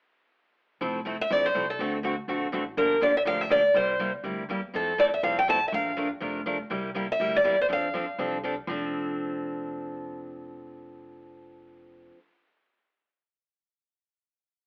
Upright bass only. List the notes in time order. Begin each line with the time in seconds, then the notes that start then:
0.81 F1
1.31 A#1
1.55 C2
1.79 D2
2.28 A#1
2.53 A1
2.77 G1
3.25 D2
3.74 C2
4.23 D2
4.49 E2
4.74 F2
5.23 C2
5.72 A#1
6.22 F1
6.71 C2
7.20 D2
7.44 E2
7.70 F2
8.18 C2
8.67 F1